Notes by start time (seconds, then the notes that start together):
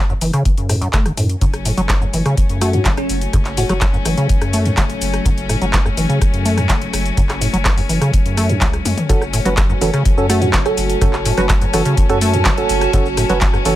Already playing: F#1
0.10 F#2, cabasa
0.21 F#1 E3, open hi-hat, cabasa
0.33 C#3, cross-stick, closed hi-hat, cabasa
0.45 kick, closed hi-hat, cabasa
0.57 F#2, closed hi-hat, cabasa
0.69 A2, cross-stick, open hi-hat, cabasa
0.81 F#2, closed hi-hat, cabasa
0.93 E1 A3, kick, clap, closed hi-hat, cabasa
1.05 C#3, cross-stick, closed hi-hat, cabasa
1.17 F#2 A2, open hi-hat, cabasa
1.29 closed hi-hat, cabasa
1.41 F#1 F#2 F#3 A3 C#4, kick, closed hi-hat, cabasa
1.54 cross-stick, closed hi-hat, cabasa
1.65 A2, open hi-hat, cabasa
1.77 F#1 F#3, closed hi-hat, cabasa
1.89 F#3, kick, cross-stick, clap, closed hi-hat, cabasa
2.02 F#2, cabasa
2.13 F#1 E3, open hi-hat, cabasa
2.26 C#3, cross-stick, closed hi-hat, cabasa
2.37 kick, closed hi-hat, cabasa
2.49 F#2, closed hi-hat, cabasa
2.61 A3 F#4, cross-stick, open hi-hat, cabasa
2.73 F#2 F#4, closed hi-hat, cabasa
2.85 F#1 F#3, kick, clap, closed hi-hat, cabasa
2.97 C#4, cross-stick, closed hi-hat, cabasa
3.09 F#1, open hi-hat, cabasa
3.21 closed hi-hat, cabasa
3.33 F#1 F#2, kick, cross-stick, closed hi-hat, cabasa
3.45 clap, closed hi-hat, cabasa
3.57 A2 F#4, open hi-hat, cabasa
3.69 F#1 F#3 F#4, cross-stick, closed hi-hat, cabasa
3.81 F#3, kick, clap, closed hi-hat, cabasa
3.94 F#2, cabasa
4.05 F#1 E3, cross-stick, open hi-hat, cabasa
4.17 C#3, closed hi-hat, cabasa
4.29 kick, closed hi-hat, cabasa
4.41 F#2, cross-stick, closed hi-hat, cabasa
4.53 A3, open hi-hat, cabasa
4.65 F#2, closed hi-hat, cabasa
4.77 F#1 F#3, kick, cross-stick, clap, closed hi-hat, cabasa
4.90 closed hi-hat, cabasa
5.01 F#1, open hi-hat, cabasa
5.14 cross-stick, closed hi-hat, cabasa
5.25 F#1 F#2, kick, closed hi-hat, cabasa
5.38 closed hi-hat, cabasa
5.49 A2, cross-stick, open hi-hat, cabasa
5.61 F#1 F#3, closed hi-hat, cabasa
5.73 F#3, kick, clap, closed hi-hat, cabasa
5.86 F#2, cross-stick, cabasa
5.97 F#1 E3, open hi-hat, cabasa
6.09 C#3, closed hi-hat, cabasa
6.21 kick, cross-stick, closed hi-hat, cabasa
6.33 F#2, closed hi-hat, cabasa
6.45 A3, open hi-hat, cabasa
6.57 F#2, cross-stick, closed hi-hat, cabasa
6.69 F#1 F#3, kick, clap, closed hi-hat, cabasa
6.82 closed hi-hat, cabasa
6.93 F#1, cross-stick, open hi-hat, cabasa
7.06 closed hi-hat, cabasa
7.17 F#1 F#2, kick, closed hi-hat, cabasa
7.29 cross-stick, clap, closed hi-hat, cabasa
7.41 A2, open hi-hat, cabasa
7.53 F#1 F#3, closed hi-hat, cabasa
7.65 F#3, kick, cross-stick, clap, closed hi-hat, cabasa
7.77 F#2, open hi-hat, cabasa
7.89 F#1 E3, open hi-hat, cabasa
8.01 C#3, cross-stick, closed hi-hat, cabasa
8.13 kick, closed hi-hat, cabasa
8.26 F#2, closed hi-hat, cabasa
8.37 A3, cross-stick, open hi-hat, cabasa
8.49 F#2, closed hi-hat, cabasa
8.61 C#2 F#3, kick, clap, closed hi-hat, cabasa
8.73 cross-stick, closed hi-hat, cabasa
8.85 F#2, open hi-hat, high tom, cabasa
8.98 closed hi-hat, mid tom, cabasa
9.09 F#1 F#2 F#3 A3 C#4 F#4 A4, kick, closed hi-hat, cabasa
9.22 cross-stick, cabasa
9.28 C#5
9.33 A2, open hi-hat, cabasa
9.45 F#1 F#3 C#4 F#4 B4, closed hi-hat, cabasa
9.57 F#3, kick, cross-stick, clap, closed hi-hat, cabasa
9.70 F#2, cabasa
9.81 F#1 E3 C#4 F#4 A4, open hi-hat, cabasa
9.94 C#3, cross-stick, closed hi-hat, cabasa
10.05 kick, closed hi-hat, cabasa
10.17 F#2 C#4 F#4 A4, cabasa
10.27 A3 F#4 A5, cross-stick, open hi-hat, cabasa
10.42 F#2 F#4, closed hi-hat, cabasa
10.53 F#1 F#3, kick, clap, closed hi-hat, cabasa
10.66 C#4 F#4 A4, cross-stick, closed hi-hat, cabasa
10.77 F#1, open hi-hat, cabasa
10.90 closed hi-hat, cabasa
11.01 F#1 F#2 C#4 F#4 A4, kick, cross-stick, closed hi-hat, cabasa
11.13 clap, cabasa
11.25 A2, open hi-hat, cabasa
11.38 F#1 F#3 C#4 F#4 B4, cross-stick, closed hi-hat, cabasa
11.49 F#3, kick, clap, closed hi-hat, cabasa
11.61 F#2, closed hi-hat, cabasa
11.73 F#1 E3 C#4 F#4 A4, cross-stick, open hi-hat, cabasa
11.85 C#3, closed hi-hat, cabasa
11.97 kick, closed hi-hat, cabasa
12.09 F#2 C#4 F#4 A4, cross-stick, closed hi-hat, cabasa
12.21 A3, open hi-hat, cabasa
12.34 F#2, closed hi-hat, cabasa
12.45 F#1 F#3, kick, cross-stick, clap, closed hi-hat, cabasa
12.58 C#4 F#4 A4, closed hi-hat, cabasa
12.69 F#1, open hi-hat, cabasa
12.81 cross-stick, closed hi-hat, cabasa
12.93 F#1 F#2 C#4 F#4 A4, kick, closed hi-hat, cabasa
13.06 cabasa
13.17 A2, cross-stick, open hi-hat, cabasa
13.29 F#1 F#3 C#4 F#4 B4, closed hi-hat, cabasa
13.41 F#3, kick, clap, closed hi-hat, cabasa
13.53 F#2, cross-stick, cabasa
13.65 F#1 E3 C#4 F#4 A4, open hi-hat, cabasa